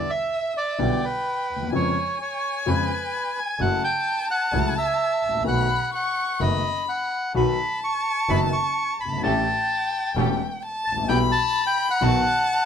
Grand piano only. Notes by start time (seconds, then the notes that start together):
0.78 B1 B2 D3 G3 B3 E4
1.56 D2
1.62 D#2
1.67 E2
1.72 F2 C#3 F3 G#3 B3 F4
2.66 F2 C#3 F3 G#3 B3 F4
3.60 F#2 C#3 F#3 A3 E4
4.53 C#2 C#3 F#3 A3 E4
5.28 G#1
5.34 A1
5.40 A#1 D#3 A3
5.44 B1 B2 B3 F#4
6.40 F#1 F#2 D#3 A3 B3 F#4
7.34 B1 B2 D#3 F#3 B3 F#4
8.29 F#1 F#2 D#3 F#3 B3 F#4
9.05 F#1
9.12 G1
9.17 G#1
9.23 A1 A2 E3 A3 C#4 G4
10.16 E1 E2 E3 A3 C#4 G4
10.91 G#1
10.97 A1
11.03 A#1
11.09 B1 B2 E3 G3 B3 G4
12.01 B1 B2 D#3 F#3 B3 F#4